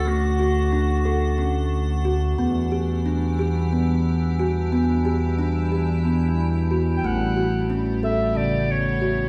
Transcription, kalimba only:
\new Staff \with { instrumentName = "Kalimba" } { \time 7/8 \key e \dorian \tempo 4 = 90 a8 fis'8 d'8 a'8 cis'4 fis'8 | b8 g'8 d'8 g'8 b4 fis'8 | b8 g'8 d'8 g'8 b4 fis'8 | a8 fis'8 cis'8 a'8 cis4 fis'8 | }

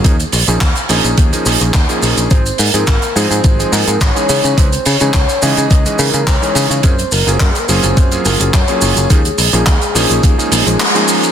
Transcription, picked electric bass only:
\new Staff \with { instrumentName = "Picked electric bass" } { \clef bass \time 4/4 \key ees \dorian \tempo 4 = 106 ees,16 r16 bes,,16 bes,,16 ees,16 r16 bes,,16 bes,,16 ees,16 r16 bes,,16 bes,,16 ees,16 r16 bes,,16 bes,,16 | aes,,16 r16 aes,16 aes,16 aes,,16 r16 aes,16 aes,16 aes,,16 r16 aes,16 aes,16 aes,,16 r16 des16 des16 | des,16 r16 des16 des16 des,16 r16 des16 des16 des,16 r16 des16 des16 des,16 r16 des16 des16 | ges,16 r16 ges,,16 ges,,16 ges,16 r16 ges,,16 ges,,16 ges,16 r16 ges,,16 ges,,16 ges,16 r16 ges,,16 ges,,16 |
ees,16 r16 bes,,16 bes,,16 ees,16 r16 bes,,16 bes,,16 ees,16 r16 bes,,16 bes,,16 r4 | }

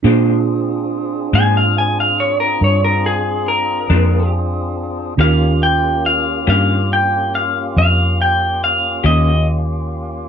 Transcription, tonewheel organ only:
\new Staff \with { instrumentName = "Tonewheel organ" } { \time 12/8 \key ees \major \tempo 4. = 47 <c' d' f' aes'>1. | <bes des' f' g'>1. | }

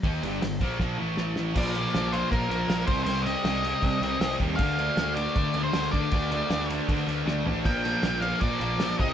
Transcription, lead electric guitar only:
\new Staff \with { instrumentName = "Lead electric guitar" } { \time 4/4 \key bes \major \tempo 4 = 157 r1 | d''4. c''8 bes'4. c''8 | c''8 ees''2. r8 | f''4. d''4~ d''16 c''8. d''8~ |
d''4. r2 r8 | g''4. f''8 d''4. ees''8 | }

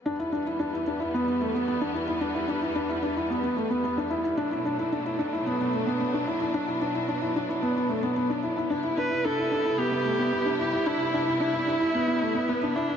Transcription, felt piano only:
\new Staff \with { instrumentName = "Felt piano" } { \time 4/4 \key e \minor \tempo 4 = 111 d'16 e'16 d'16 e'16 d'16 e'16 d'16 e'16 b16 b16 a16 b16 b16 d'16 e'16 e'16 | d'16 e'16 d'16 e'16 d'16 e'16 d'16 e'16 b16 b16 a16 b16 b16 d'16 e'16 e'16 | d'16 e'16 d'16 e'16 d'16 e'16 d'16 e'16 b16 b16 a16 b16 b16 d'16 e'16 e'16 | d'16 e'16 d'16 e'16 d'16 e'16 d'16 e'16 b16 b16 a16 b16 b16 d'16 e'16 e'16 |
d'16 e'16 d'16 e'16 d'16 e'16 d'16 e'16 b16 b16 a16 b16 b16 d'16 e'16 e'16 | d'16 e'16 d'16 e'16 d'16 e'16 d'16 e'16 b16 b16 a16 b16 b16 d'16 e'16 e'16 | }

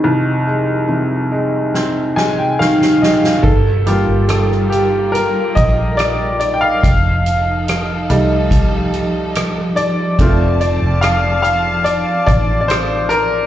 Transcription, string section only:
\new Staff \with { instrumentName = "String section" } { \time 4/4 \key f \mixolydian \tempo 4 = 71 << { r1 | <bes f'>1 | <ees' a'>1 | <c' a''>1 | } \\ { r1 | g1 | f1~ | f1 | } >> }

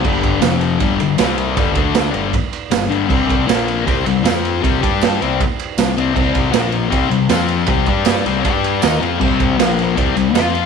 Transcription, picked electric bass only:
\new Staff \with { instrumentName = "Picked electric bass" } { \clef bass \time 4/4 \key c \major \tempo 4 = 157 g,,4 f,,4 g,,8 g,,8 c,4 | g,,8 d,4 g,,8 r4 g,,8 g,,8 | c,4 bes,,4 c,8 c,8 f,4 | c,8 g,4 c,8 r4 c,8 c,8 |
c,4 bes,,4 c,8 c,8 f,4 | c,8 g,4 c,8 g,4 ees,8 f,8 | c,4 bes,,4 c,8 c,8 f,4 | }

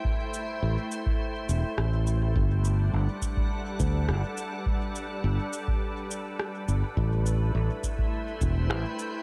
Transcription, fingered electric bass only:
\new Staff \with { instrumentName = "Fingered electric bass" } { \clef bass \time 4/4 \key a \dorian \tempo 4 = 104 r4 a,,8 r4 e,,8 a,,4 | g,,4 g,,8 r4 d,8 g,,8 r8 | r4 g,,8 r2 g,,8 | a,,4 a,,8 r4 e,,8 a,,8 r8 | }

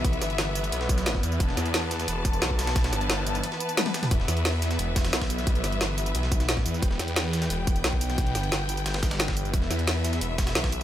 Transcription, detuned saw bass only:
\new Staff \with { instrumentName = "Detuned saw bass" } { \clef bass \time 4/4 \key e \minor \tempo 4 = 177 b,,8 g,,4. b,,4. e,8 | e,,8 e,4. e,,4 b,,4~ | b,,8 g,,4. r2 | e,,8 e,4. e,,4 b,,4~ |
b,,8 g,,4. b,,4. e,8 | e,,8 e,4. e,,4 b,,4~ | b,,8 g,,4. g,,2 | e,,8 e,4. e,,4 b,,4 | }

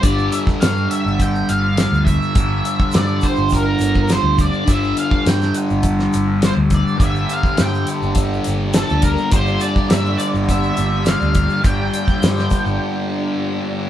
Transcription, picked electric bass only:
\new Staff \with { instrumentName = "Picked electric bass" } { \clef bass \time 4/4 \key g \dorian \tempo 4 = 103 g,,8 r8 g,8 r16 g,,8. g,,8. d,8 r16 | g,,8 r8 g,8 r16 g,,8. g,,8. d,8 r16 | g,,8 r8 g,8 r16 g,,8. g,,8. d,8 r16 | g,,8 r8 g,8 r16 g,,8. g,,8. d,8 r16 |
g,,8 r8 g,8 r16 g,,8. g,,8. d,8 r16 | g,,8 r8 g,8 r16 g,,16 r2 | }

